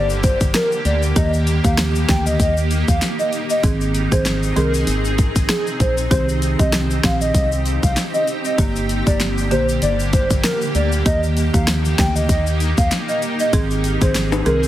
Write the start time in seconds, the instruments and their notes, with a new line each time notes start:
Already playing: fm bass G1, ambient pad D3 A#3 G4
0.10 shaker
0.23 soft synth lead C5, kick, closed hi-hat, shaker
0.41 fm bass G1, kick, shaker
0.54 soft synth lead A#4, cross-stick, snare, closed hi-hat, shaker
0.72 shaker
0.85 fm bass D2, soft synth lead D5, closed hi-hat, shaker
1.03 shaker
1.16 fm bass D#2, marimba D#3 A#3 G4, ambient pad D#4, soft synth lead D#5, kick, closed hi-hat, shaker
1.34 shaker
1.47 closed hi-hat, shaker
1.64 fm bass D#2, marimba D#3 A#3 G4, soft synth lead F5, kick, shaker
1.78 cross-stick, snare, closed hi-hat, shaker
1.95 shaker
2.09 fm bass D2, marimba D#3 A#3 G4, soft synth lead G5, kick, cross-stick, snare, closed hi-hat, shaker
2.26 soft synth lead D#5, shaker
2.40 fm bass D#2, soft synth lead D#5, kick, closed hi-hat, shaker
2.57 shaker
2.71 closed hi-hat, shaker
2.88 fm bass D#2, soft synth lead F5, kick, shaker
3.02 snare, closed hi-hat, shaker
3.19 soft synth lead D#5, shaker
3.33 closed hi-hat, shaker
3.50 soft synth lead D#5, shaker
3.63 fm bass G#1, marimba D#3 C4 G#4, ambient pad C4 G#4, kick, closed hi-hat, shaker
3.81 shaker
3.95 closed hi-hat, shaker
4.12 fm bass G#1, marimba D#3 C4 G#4, soft synth lead C5, kick, shaker
4.25 snare, closed hi-hat, shaker
4.43 shaker
4.56 fm bass C2, marimba D#3 C4 G#4, soft synth lead A#4, closed hi-hat, shaker
4.74 shaker
4.87 fm bass G#1, closed hi-hat, shaker
5.05 shaker
5.18 kick, closed hi-hat, shaker
5.36 fm bass G#1, kick, shaker
5.49 soft synth lead G#4, cross-stick, snare, closed hi-hat, shaker
5.67 shaker
5.80 fm bass A#1, soft synth lead C5, kick, closed hi-hat, shaker
5.98 shaker
6.11 fm bass C2, marimba D#3 C4 G4, ambient pad G4, soft synth lead C5, kick, closed hi-hat, shaker
6.29 shaker
6.42 closed hi-hat, shaker
6.59 fm bass C2, marimba D#3 C4 G4, soft synth lead D#5, kick, shaker
6.72 cross-stick, snare, closed hi-hat, shaker
6.91 shaker
7.04 fm bass A#1, marimba D#3 C4 G4, soft synth lead F5, kick, cross-stick, snare, closed hi-hat, shaker
7.21 soft synth lead D#5, shaker
7.34 fm bass C2, soft synth lead D#5, kick, closed hi-hat, shaker
7.52 shaker
7.66 closed hi-hat, shaker
7.83 fm bass C2, soft synth lead F5, kick, shaker
7.96 snare, closed hi-hat, shaker
8.14 soft synth lead D#5, shaker
8.28 closed hi-hat, shaker
8.45 soft synth lead D#5, shaker
8.58 fm bass G1, marimba D3 A#3 G4, ambient pad D3 A#3, kick, closed hi-hat, shaker
8.76 shaker
8.89 closed hi-hat, shaker
9.06 fm bass G1, marimba D3 A#3 G4, soft synth lead D5, kick, shaker
9.20 snare, closed hi-hat, shaker
9.38 shaker
9.51 fm bass A#1, marimba D3 A#3 G4, soft synth lead C5, closed hi-hat, shaker
9.69 shaker
9.82 fm bass G1, soft synth lead D5, closed hi-hat, shaker
10.00 shaker
10.13 soft synth lead C5, kick, closed hi-hat, shaker
10.31 fm bass G1, kick, shaker
10.44 soft synth lead A#4, cross-stick, snare, closed hi-hat, shaker
10.62 shaker
10.75 fm bass D2, soft synth lead D5, closed hi-hat, shaker
10.92 shaker
11.06 fm bass D#2, marimba D#3 A#3 G4, ambient pad A#3 D#4, soft synth lead D#5, kick, closed hi-hat, shaker
11.23 shaker
11.37 closed hi-hat, shaker
11.54 fm bass D#2, marimba D#3 A#3 G4, soft synth lead F5, kick, shaker
11.67 cross-stick, snare, closed hi-hat, shaker
11.85 shaker
11.98 fm bass D2, marimba D#3 A#3 G4, soft synth lead G5, kick, cross-stick, snare, closed hi-hat, shaker
12.16 soft synth lead D#5, shaker
12.29 fm bass D#2, soft synth lead D#5, kick, closed hi-hat, shaker
12.47 shaker
12.60 closed hi-hat, shaker
12.78 fm bass D#2, soft synth lead F5, kick, shaker
12.91 snare, closed hi-hat, shaker
13.08 soft synth lead D#5, shaker
13.22 closed hi-hat, shaker
13.39 soft synth lead D#5, shaker
13.53 fm bass G#1, marimba D#3 C4 G#4, ambient pad C4 G#4, kick, closed hi-hat, shaker
13.71 shaker
13.84 closed hi-hat, shaker
14.01 fm bass G#1, marimba D#3 C4 G#4, soft synth lead C5, kick, shaker
14.15 snare, closed hi-hat, shaker
14.32 high timbale, shaker
14.46 fm bass C2, marimba D#3 C4 G#4, soft synth lead A#4, closed hi-hat, shaker
14.63 shaker